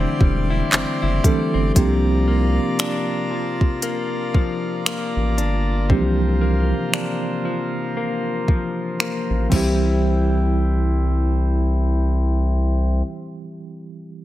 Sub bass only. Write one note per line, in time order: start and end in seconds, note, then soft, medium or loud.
0.21 0.62 E1 loud
0.73 0.85 F#1 soft
1.03 1.20 F#1 medium
1.54 1.72 G1 loud
1.76 2.59 C2 loud
5.16 5.40 A1 medium
5.38 5.91 G1 medium
5.90 6.73 C2 loud
9.30 9.48 A1 medium
9.52 13.02 C2 loud